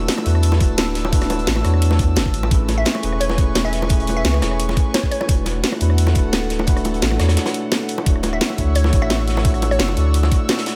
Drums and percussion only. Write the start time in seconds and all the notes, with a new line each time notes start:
0.08 snare, closed hi-hat
0.18 cross-stick, high bongo
0.26 closed hi-hat
0.35 cross-stick
0.43 closed hi-hat
0.52 snare, high bongo
0.60 kick, closed hi-hat
0.78 snare, closed hi-hat, high bongo
0.95 snare, closed hi-hat
1.05 high bongo
1.12 kick, closed hi-hat
1.21 cross-stick, snare, closed hi-hat
1.30 closed hi-hat, high bongo
1.39 closed hi-hat
1.47 snare, closed hi-hat
1.56 cross-stick, high bongo
1.65 cross-stick, closed hi-hat
1.74 cross-stick
1.82 closed hi-hat
1.91 snare, high bongo
1.99 kick, closed hi-hat
2.16 snare, closed hi-hat, high bongo
2.26 kick
2.34 closed hi-hat
2.43 high bongo
2.51 kick, closed hi-hat
2.68 snare, closed hi-hat, high bongo
2.85 snare, closed hi-hat
2.95 cross-stick, high bongo
3.03 closed hi-hat
3.12 cross-stick
3.21 closed hi-hat
3.29 snare, high bongo
3.38 kick, closed hi-hat
3.55 snare, closed hi-hat, high bongo
3.72 snare, closed hi-hat
3.82 high bongo
3.89 kick, closed hi-hat
4.00 closed hi-hat
4.07 closed hi-hat, high bongo
4.25 snare, closed hi-hat
4.34 cross-stick, high bongo
4.42 cross-stick, snare, closed hi-hat
4.51 cross-stick
4.60 closed hi-hat
4.69 snare, high bongo
4.77 kick, closed hi-hat
4.94 snare, closed hi-hat, high bongo
5.03 kick
5.12 closed hi-hat
5.21 high bongo
5.29 kick, closed hi-hat
5.46 snare, closed hi-hat, high bongo
5.64 snare, closed hi-hat
5.72 cross-stick, high bongo
5.81 closed hi-hat
5.90 cross-stick
5.98 closed hi-hat
6.07 snare, high bongo
6.15 kick, closed hi-hat
6.33 snare, closed hi-hat, high bongo
6.50 snare, closed hi-hat
6.59 high bongo
6.67 kick, closed hi-hat
6.77 cross-stick, closed hi-hat
6.84 closed hi-hat, high bongo
6.94 closed hi-hat
7.02 snare, closed hi-hat
7.11 cross-stick, high bongo
7.20 cross-stick, snare, closed hi-hat
7.28 cross-stick, snare, closed hi-hat
7.37 snare, closed hi-hat
7.46 snare, closed hi-hat, high bongo
7.54 closed hi-hat
7.72 snare, closed hi-hat, high bongo
7.89 closed hi-hat
7.98 high bongo
8.06 kick, closed hi-hat
8.16 cross-stick
8.23 snare, closed hi-hat, high bongo
8.33 cross-stick
8.41 snare, closed hi-hat
8.50 high bongo
8.58 kick, closed hi-hat
8.75 closed hi-hat
8.84 snare, high bongo
8.93 kick, closed hi-hat
9.02 cross-stick
9.10 snare, closed hi-hat, high bongo
9.19 cross-stick
9.28 snare, closed hi-hat
9.37 snare, high bongo
9.45 kick, closed hi-hat
9.54 cross-stick, closed hi-hat
9.62 closed hi-hat, high bongo
9.71 cross-stick, closed hi-hat
9.79 snare, closed hi-hat
9.88 high bongo
9.97 closed hi-hat
10.14 closed hi-hat
10.23 snare, high bongo
10.32 kick, closed hi-hat
10.49 snare, closed hi-hat, high bongo
10.58 snare, closed hi-hat
10.66 snare, closed hi-hat